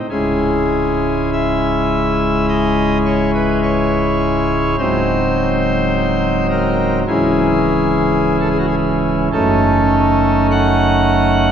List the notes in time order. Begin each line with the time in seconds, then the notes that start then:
0.10 C#1 C#2 G#3 C#4 E4 G#4
1.33 E5
2.49 D#5
3.06 C#5
3.34 B4
3.63 C#5
4.79 C#1 C#2 F#3 C4 D#4 C5
6.50 A#4
7.08 C#1 C#2 E3 C#4 E4 G#4
8.41 A4
8.50 G#4
8.58 F#4
8.68 G#4
9.33 F#1 F#2 A3 C#4 D#4 A4
10.51 F#5